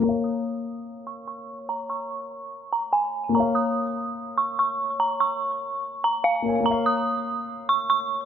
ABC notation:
X:1
M:4/4
L:1/8
Q:1/4=145
K:Bbm
V:1 name="Synth bell"
b e'3 z d' d' z | b d'4 b a z | b e'3 z d' d' z | b d'4 b f z |
b e'3 z d' d' z |]
V:2 name="Grand piano"
[B,Bdf]8- | [B,Bdf]8 | [B,Bdf]8- | [B,Bdf]6- [B,Bdf] [B,Bda] |
[B,Bdf]8 |]